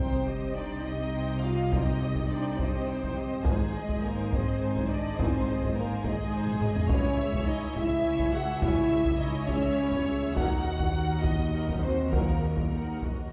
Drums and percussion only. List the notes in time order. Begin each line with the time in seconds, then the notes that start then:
1.72 taiko
2.15 taiko
2.59 taiko
3.03 taiko
3.46 taiko
3.89 taiko
4.33 taiko
4.75 taiko
5.19 taiko
5.62 taiko
6.04 taiko
6.47 taiko low-mid
6.61 taiko low-mid
6.75 taiko low
6.90 taiko
7.33 taiko
7.76 taiko
8.20 taiko
8.62 taiko
9.05 taiko
9.48 taiko
9.92 taiko
10.36 taiko
10.79 taiko
11.24 taiko
11.68 taiko
12.13 taiko
12.57 taiko
13.02 taiko